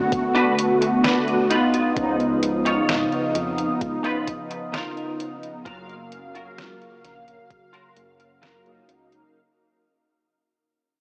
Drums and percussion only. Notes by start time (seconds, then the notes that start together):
0.12 kick, closed hi-hat
0.36 closed hi-hat
0.58 closed hi-hat
0.82 closed hi-hat
1.04 snare, closed hi-hat
1.28 closed hi-hat
1.51 closed hi-hat
1.74 closed hi-hat
1.97 kick, closed hi-hat
2.20 closed hi-hat
2.43 closed hi-hat
2.66 closed hi-hat
2.89 snare, closed hi-hat
3.12 closed hi-hat
3.35 closed hi-hat
3.58 closed hi-hat
3.81 kick, closed hi-hat
4.04 closed hi-hat
4.27 kick, closed hi-hat
4.51 closed hi-hat
4.74 snare, closed hi-hat
4.97 closed hi-hat
5.20 closed hi-hat
5.43 closed hi-hat
5.66 kick, closed hi-hat
5.89 closed hi-hat
6.12 closed hi-hat
6.35 closed hi-hat
6.58 snare, closed hi-hat
6.81 closed hi-hat
7.04 snare, closed hi-hat
7.28 closed hi-hat
7.50 kick, closed hi-hat
7.74 closed hi-hat
7.97 closed hi-hat
8.20 closed hi-hat
8.43 snare, closed hi-hat
8.66 closed hi-hat
8.89 closed hi-hat
9.12 closed hi-hat